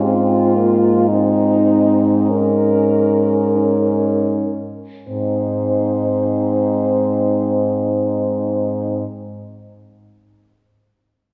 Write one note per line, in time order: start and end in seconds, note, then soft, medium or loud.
0.00 4.56 G#2 soft
0.00 0.57 C4 soft
0.00 1.09 F4 soft
0.05 1.10 F4 medium
0.56 1.09 A#3 soft
1.09 2.31 C4 soft
1.09 2.29 D#4 medium
1.09 3.59 D#4 soft
2.30 3.57 C#4 soft
2.30 4.28 A#4 medium
3.56 4.60 C#4 soft
3.56 4.59 D#4 soft
5.09 9.05 G#2 soft
5.09 9.04 C4 soft
5.09 9.05 D#4 soft
5.09 9.04 C5 soft